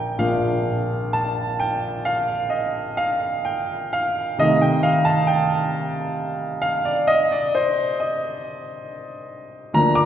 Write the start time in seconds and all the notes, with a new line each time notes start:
Already playing: A#1 F3 A#3 D4 G5 A#5
0.18 A#1 F3 A#3 D4 F5
1.13 A5
1.60 G5
2.05 F5
2.50 D#5
2.97 F5
3.45 G5
3.93 F5
4.38 C2 D#3 A3 D#4 D#5
4.62 G5
4.83 F5
5.05 A5
5.27 G5
6.62 F5
6.85 D5
7.07 D#5
7.32 D5
7.55 C5
8.00 D#5
9.73 D2 F3 A#3 D4 A#5
9.95 D6